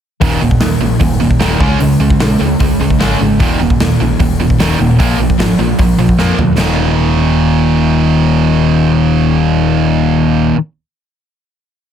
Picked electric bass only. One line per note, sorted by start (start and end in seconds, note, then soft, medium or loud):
0.22 0.35 D#1 medium
0.41 0.55 D#1 medium
0.60 0.74 D#2 medium
0.80 0.94 A#1 medium
1.01 1.28 D#1 loud
1.41 1.54 D#1 medium
1.60 1.74 C#2 medium
1.80 1.94 C#2 medium
2.00 2.14 C#2 medium
2.21 2.34 A#1 medium
2.40 2.54 C#2 medium
2.60 2.74 C#2 loud
2.81 2.94 C#2 medium
3.01 3.15 G#1 medium
3.21 3.40 G#1 medium
3.40 3.54 D#1 medium
3.60 3.74 D#1 medium
3.81 3.94 D#2 medium
4.01 4.14 A#1 medium
4.20 4.47 D#1 medium
4.61 4.74 D#1 medium
4.80 5.00 D#1 medium
5.00 5.13 A#1 medium
5.20 5.33 A#1 medium
5.40 5.53 G#1 medium
5.59 5.72 A#1 medium
5.79 5.92 A#1 medium
5.99 6.12 A#1 medium
6.18 6.32 F2 medium
6.38 6.52 D2 medium
6.58 10.51 D#1 medium